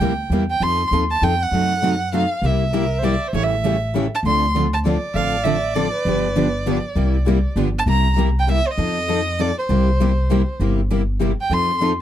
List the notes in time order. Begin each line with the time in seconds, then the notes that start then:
Already playing: G5
0.00 D2 C3 G3 A#3 E4 G4
0.30 E2 C3 G3 A#3 E4
0.34 G4
0.50 G5
0.60 F2 F3 C4 D#4 A4 C6
0.91 D#2 F3 C4 D#4 A4
1.11 A5
1.22 F2 F3 C4 D#4 A4 G5
1.43 F#5
1.51 F#2 C3 F#3 A3 C4 D#4 F#4 A4
1.82 C3 F#3 A3 C4 D#4 F#4 A4
2.12 C3 F#3 A3 C4 D#4 F#4 A4 F5
2.42 C2 C3 G3 A#3 E4 G4 E5
2.72 C3 G3 A#3 E4 G4 A#4
2.99 C3 G3 C5
3.03 A#3 E4 G4 D5
3.28 C5
3.33 A1 C#3 E3 G3 A3 C#4 E4 G4 A4 C#5
3.43 E5
3.64 C#3 E3 G3 A3 C#4 E4 G4 A4
3.94 C#3 E3 G3 A3 C#4 E4 G4 A4
4.15 A5
4.23 D2 D3 F3 C4 D4 A4 C6
4.55 D3 F3 C4 D4 A4
4.73 A5
4.85 D3 F3 C4 D4 A4 D5
5.14 A1 D3 F3 C4 D4 A4 F5
5.44 D3 F3 C4 D4 A4 E5
5.74 D3 F3 C4 D4 A4 D5
5.93 B4
6.05 G1 D3 F3 B3 D4 G4
6.36 D3 F3 B3 D4 G4
6.66 D3 F3 B3 D4 G4
6.95 C2 C3 G3 A#3 E4 G4
7.25 C3 G3 A#3 E4 G4
7.56 G1 D3 F3 B3 D4 G4
7.79 A5
7.86 C2 C3 G3 A#3 E4 G4 A#5
8.16 C3 G3 A#3 E4 G4
8.39 G5
8.47 C3 G3 A#3 E4 G4
8.52 E5
8.67 C5 D#5
8.77 F2 F3 C4 D#4 A4
9.08 F3 C4 D#4 A4
9.40 F3 C4 D#4 A4 D5
9.58 C5
9.69 C2 C3 G3 A#3 E4 G4
10.00 C3 G3 A#3 E4 G4
10.30 C3 G3 A#3 E4 G4
10.60 G1 C3 G3 A#3 E4 G4
10.90 C3 G3 A#3 E4 G4
11.19 C3 G3 A#3 E4 G4
11.41 G5
11.49 F2 F3 C4 D#4 A4 C6
11.80 F3 C4 D#4 A4